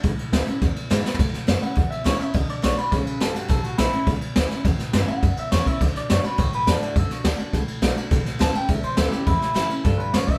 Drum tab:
RD |x--x--x--x--x--x--x-----|x--x--x--x--x--x--x--x--|x--x--x--x--x--x--x--x--|x--x--x--x--x--x--x--x--|
SD |------o-----o-----o--o--|---o--o-----------o-----|------o-----o-----o--o--|o-----o-----------o--o--|
FT |-----------------------o|------------------------|------------------------|------------------------|
BD |o-----------o-----------|o-----------o-----------|o-----------o-----------|o-----------o-----------|

RD |x--x--x--x--x--x--x--x--|x--x--x--x--x--x--x--x--|x--x--x--x--x--x--x--x--|x--x--x--x--x--x--x--x--|
SD |o--o--o-----------o-----|---o--o-----------o--o--|---o--o-----o-----o-----|o--o--o-----------o--o--|
FT |------------------------|------------------------|------------------------|------------------------|
BD |o-----------o--------o--|o-----------o-----------|o-----------o-----------|o-----------o-----------|

RD |x--x--x--x--x--x--x--x--|
SD |---o--o-----o-----o-----|
FT |------------------------|
BD |o-----------o--------o--|